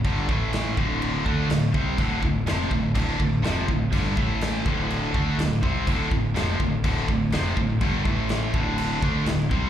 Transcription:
<<
  \new Staff \with { instrumentName = "Distorted electric guitar" } { \clef bass \time 4/4 \key d \minor \tempo 4 = 124 <g, d g>8 <a, e a>4 <d, a, d>4 <d a d'>8 <d, a,>8 <c g c'>8 | <d, a, d>8 <d, a,>8 <f, c f>8 <d, a,>8 <d, a, d>8 <d, a,>8 <f, c f>8 <d, a,>8 | <g, d g>8 <a, e a>4 <d, a, d>4 <d a d'>8 <d, a,>8 <c g c'>8 | <d, a, d>8 <d, a,>8 <f, c f>8 <d, a,>8 <d, a, d>8 <d, a,>8 <f, c f>8 <d, a,>8 |
<g, d g>8 <a, e a>4 <d, a, d>4 <d a d'>8 <d, a,>8 <c g c'>8 | }
  \new Staff \with { instrumentName = "Fingered electric bass" } { \clef bass \time 4/4 \key d \minor g,,8 a,,4 d,,4 d,8 d,,8 c,8 | d,,8 d,,8 f,,8 d,,8 d,,8 d,,8 f,,8 d,,8 | g,,8 a,,4 d,,4 d,8 d,,8 c,8 | d,,8 d,,8 f,,8 d,,8 d,,8 d,,8 f,,8 d,,8 |
g,,8 a,,4 d,,4 d,8 d,,8 c,8 | }
  \new DrumStaff \with { instrumentName = "Drums" } \drummode { \time 4/4 <cymc bd>8 bd8 <cymc sn>8 bd8 cymc8 bd8 <cymc sn>8 bd8 | <cymc bd>8 bd8 <cymc sn>8 bd8 <cymc bd>8 bd8 <cymc sn>8 bd8 | <cymc bd>8 bd8 <cymc sn>8 bd8 cymc8 bd8 <cymc sn>8 bd8 | <cymc bd>8 bd8 <cymc sn>8 bd8 <cymc bd>8 bd8 <cymc sn>8 bd8 |
<cymc bd>8 bd8 <cymc sn>8 bd8 cymc8 bd8 <cymc sn>8 bd8 | }
>>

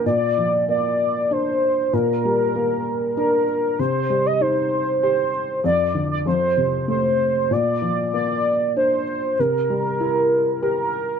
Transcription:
<<
  \new Staff \with { instrumentName = "Soft synth lead" } { \time 3/4 \key bes \major \tempo 4 = 96 d''4 d''4 c''4 | bes'2 bes'4 | c''8. ees''16 c''4 c''4 | d''8. d''16 c''4 c''4 |
d''4 d''4 c''4 | bes'2 bes'4 | }
  \new Staff \with { instrumentName = "Felt piano" } { \clef bass \time 3/4 \key bes \major bes,8 f8 bes4 d'4 | bes,8 g8 bes4 d'4 | c8 g8 ees'4 g'4 | f,8 d8 f,8 c8 a4 |
bes,8 f8 bes4 d'4 | c8 g8 e'4 g'4 | }
>>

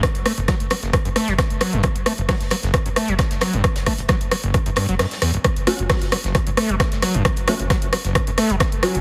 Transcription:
<<
  \new Staff \with { instrumentName = "Synth stab" } { \time 4/4 \key fis \minor \tempo 4 = 133 r1 | r1 | r1 | r8 <fis cis' fis'>8 r2. |
r8 <fis cis' fis'>8 r2 r8 <fis cis' fis'>8 | }
  \new Staff \with { instrumentName = "Acid bass" } { \clef bass \time 4/4 \key fis \minor fis,16 r16 a16 fis,,16 fis16 r16 fis16 fis,,16 fis,16 fis,16 a16 fis16 r8 fis16 fis,16 | fis,16 r16 a16 fis,,16 fis16 r16 fis16 fis,,16 fis,16 fis,16 a16 fis16 r8 fis16 fis,16 | fis,16 r16 a16 fis,,16 fis16 r16 fis16 fis,,16 fis,16 fis,16 g,16 fis16 fis,16 r16 e,16 fis,,16 | fis,16 r16 a16 fis,,16 fis16 r16 fis16 fis,,16 fis,16 fis,16 a16 fis16 r8 fis16 fis,16 |
fis,16 r16 a16 fis,,16 fis16 r16 fis16 fis,,16 fis,16 fis,16 a16 fis16 r8 fis16 fis,16 | }
  \new Staff \with { instrumentName = "Sub bass" } { \clef bass \time 4/4 \key fis \minor r16 fis,,16 r16 fis,,16 r16 fis,,16 r16 fis,,16 r16 fis,,16 r16 fis,,16 r16 fis,,16 r16 fis,,16 | r16 fis,,16 r16 fis,,16 r16 fis,,16 r16 fis,,16 r16 fis,,16 r16 fis,,16 r16 fis,,16 r16 fis,,16 | r16 fis,,16 r16 fis,,16 r16 fis,,16 r16 fis,,16 r16 fis,,16 r16 fis,,16 r4 | r16 fis,,16 r16 fis,,16 r16 fis,,16 r16 fis,,16 r16 fis,,16 r16 fis,,16 r16 fis,,16 r16 fis,,16 |
r16 fis,,16 r16 fis,,16 r16 fis,,16 r16 fis,,16 r16 fis,,16 r16 fis,,16 r16 fis,,16 r16 fis,,16 | }
  \new DrumStaff \with { instrumentName = "Drums" } \drummode { \time 4/4 <hh bd ss>16 hh16 <hh hho ss>16 hh16 <hh bd ss sn>16 hh16 <hh hho ss>16 <hh sn>16 <hh bd ss>16 hh16 <hh hho ss sn>16 hh16 <hh bd ss sn>16 hh16 <hh hho ss>16 hh16 | <hh bd ss>16 hh16 <hh hho ss>16 hh16 <hh hho bd ss sn>16 <hh sn>16 <hh hho ss>16 <hh sn>16 <hh bd ss>16 hh16 <hh hho ss>16 hh16 <hh bd ss sn>16 <hh sn>16 <hh hho ss sn>16 hh16 | <hh bd ss>16 <hh sn>16 <hho bd ss>16 hh16 <hh bd ss sn>16 hh16 <hho ss>16 hh16 <hh bd ss>16 hh16 <hh hho ss sn>16 hh16 <hh hho ss sn>16 <hh hho sn>16 <hh hho ss>16 hh16 | <hh bd ss>16 hh16 <hh hho ss>16 hh16 <hh hho bd ss sn>16 <hh sn>16 <hh hho ss>16 <hh sn>16 <hh bd ss>16 hh16 <hh hho ss>16 hh16 <hh bd ss sn>16 <hh sn>16 <hh hho ss>16 hh16 |
<hh bd ss>16 hh16 <hh hho ss>16 hh16 <hh bd ss sn>16 hh16 <hh hho ss>16 <hh sn>16 <hh bd ss>16 hh16 <hh hho ss sn>16 hh16 <hh bd ss sn>16 hh16 <hh hho ss>16 hh16 | }
>>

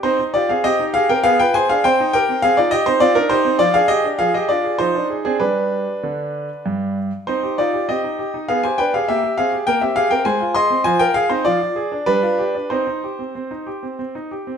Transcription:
\new Staff \with { instrumentName = "Grand piano" } { \time 3/4 \key c \minor \tempo 4 = 99 << { <ees' c''>8 <f' d''>16 <aes' f''>16 <g' ees''>8 <aes' f''>16 <bes' g''>16 <gis' f''>16 <b' g''>16 <c'' gis''>16 <gis' f''>16 | <c'' g''>8 <bes' g''>8 <aes' f''>16 <f' d''>16 <g' ees''>16 <ees' c''>16 <f' d''>16 <d' bes'>16 <ees' c''>8 | <f' d''>16 <aes' f''>16 <g' ees''>8 <aes' f''>16 <g' ees''>16 <f' d''>8 <ees' c''>8. <c' aes'>16 | <d' b'>2~ <d' b'>8 r8 |
<ees' c''>8 <f' d''>8 <g' ees''>4 <aes' f''>16 <c'' aes''>16 <b' g''>16 <aes' f''>16 | <g' e''>8 <aes' f''>8 <bes' g''>16 <g' e''>16 <aes' f''>16 <bes' g''>16 <c'' aes''>8 <ees'' c'''>8 | <c'' aes''>16 <bes' g''>16 <aes' f''>16 <ees' c''>16 <f' d''>4 <d' b'>4 | <ees' c''>2 r4 | } \\ { c'16 ees'16 g'16 c'16 c'16 ees'16 g'16 c'16 b16 f'16 gis'16 d'16 | c'16 ees'16 g'16 c'16 c'16 ees'16 r16 c'16 c'16 ees'16 g'16 c'16 | f16 d'16 aes'16 d'16 f16 aes'16 d'16 aes'16 f16 d'16 aes'16 d'16 | <g g'>4 d4 g,4 |
c'16 g'16 ees'16 g'16 c'16 ees'16 g'16 ees'16 b16 g'16 d'16 g'16 | bes16 g'16 c'16 g'16 bes16 c'16 g'16 c'16 aes16 f'16 aes'16 c'16 | f16 f'16 r16 c'16 f16 f'16 aes'16 d'16 g16 f'16 g'16 d'16 | c'16 ees'16 g'16 c'16 c'16 ees'16 g'16 c'16 c'16 ees'16 g'16 c'16 | } >> }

